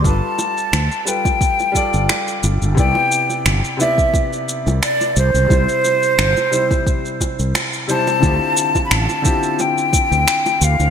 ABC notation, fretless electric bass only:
X:1
M:4/4
L:1/16
Q:"Swing 16ths" 1/4=88
K:Ddor
V:1 name="Fretless electric bass" clef=bass
G,,, z3 D,, z6 G,,, z2 G,,, G,,, | C,, z3 G,,, z6 C,, z2 C,, C,, | C,, z3 G,,, z6 C,, z4 | D,, z3 A,,, z6 D,, z2 D,, D,, |]